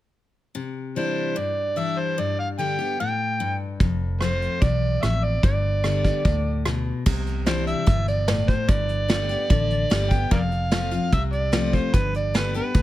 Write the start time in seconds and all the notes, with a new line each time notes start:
0.55 C3
0.96 E3 G3 D4 E4 C5
1.36 G2 D5
1.76 E3 G3 D4 E4 E5
1.99 C5
2.18 G2 D5
2.39 F5
2.58 D3 G3 B3 G4 G5
2.79 B3 G4
3.00 A2 G5
3.40 G2
3.80 F1 F2, kick, closed hi-hat
4.21 F3 A3 C4 F4 C5, cross-stick, closed hi-hat
4.42 closed hi-hat
4.61 B1 E2 D5, kick, closed hi-hat
5.03 A1 F2 E5, cross-stick, closed hi-hat
5.24 D5
5.43 G1 G2 D5, kick, closed hi-hat
5.84 D3 G3 B3 G4, cross-stick, closed hi-hat
6.04 kick, closed hi-hat
6.25 D2 A2, kick, closed hi-hat
6.65 B2, cross-stick, closed hi-hat
7.06 C2 C3, kick, crash
7.26 closed hi-hat
7.46 E3 G3 D4 E4 C5, snare, closed hi-hat
7.67 E5, closed hi-hat
7.87 G1 B2, kick, closed hi-hat
8.08 D5, closed hi-hat
8.28 A2, snare, closed hi-hat
8.48 C5, kick, closed hi-hat
8.68 G1 G2 D5, kick, closed hi-hat
8.89 closed hi-hat
9.08 D3 G3 B3 G4, snare, closed hi-hat
9.29 B3 G4, closed hi-hat
9.50 A1 D3, kick, closed hi-hat
9.70 closed hi-hat
9.90 G1 D3 G3 B3 G4, snare, closed hi-hat
10.11 B3 G4 G5, kick, closed hi-hat
10.31 F1 F2 A#4 D5 F5, kick, closed hi-hat
10.52 closed hi-hat
10.71 F3 A3 C4 F4, snare, closed hi-hat
10.91 C4 F4, closed hi-hat
11.12 C2 C3 E5, kick, closed hi-hat
11.33 D5, closed hi-hat
11.52 F3 A3 C4 F4, snare, closed hi-hat
11.73 C5, kick, closed hi-hat
11.93 G1 G2 B4, kick, closed hi-hat
12.14 D5, closed hi-hat
12.34 D3 G3 B3 G4 B4, snare, closed hi-hat
12.54 B3 G4 B4, closed hi-hat
12.75 D2 A2, kick, closed hi-hat